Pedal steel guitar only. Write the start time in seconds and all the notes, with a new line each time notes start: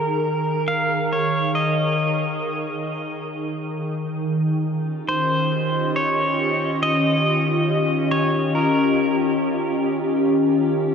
Already playing: A#4
0.68 F5
1.13 C#5
1.55 D#5
5.08 C5
5.96 C#5
6.83 D#5
8.11 C#5
8.55 A#4